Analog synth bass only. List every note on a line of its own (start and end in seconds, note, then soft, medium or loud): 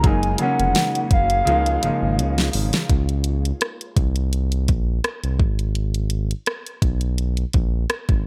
0.04 0.35 F#1 loud
0.60 0.74 F1 medium
1.11 1.42 F#1 medium
1.47 1.78 C#2 loud
1.83 1.91 G#1 medium
2.02 2.20 G#1 medium
2.19 2.50 C#2 loud
2.54 2.71 G#1 medium
2.90 3.52 C#2 loud
3.97 4.71 C2 medium
4.69 5.00 A#1 medium
5.24 5.41 C2 medium
5.40 6.33 G#1 medium
6.82 7.45 B1 medium
7.54 7.85 A#1 medium
8.09 8.23 G#1 medium